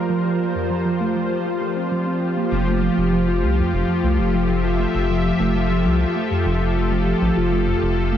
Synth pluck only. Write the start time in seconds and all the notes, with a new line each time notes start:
0.10 F3
0.25 F4
0.40 A#3
0.55 F2
0.70 F3
0.85 F3
1.01 A3
1.16 F3
1.31 F3
1.46 F3
1.61 A3
1.76 C4
1.92 F3
2.07 C4
2.22 C4
2.37 A#3
2.52 F3
2.67 A3
2.83 F3
2.98 F3
3.13 F3
3.28 F4
3.43 A3
3.58 F2
3.73 F3
3.89 F3
4.04 A3
4.19 F3
4.34 F3
4.49 F3
4.64 F4
4.79 A3
4.95 F2
5.10 F3
5.25 F3
5.40 A3
5.55 F3
5.70 F3
5.85 F3
6.01 F4
6.16 A3
6.31 F2
6.46 F3
6.61 F3
6.77 A3
6.92 F3
7.07 F3
7.22 F3
7.37 F4
7.52 A3
7.67 F2
7.83 F3
7.98 F3
8.13 A3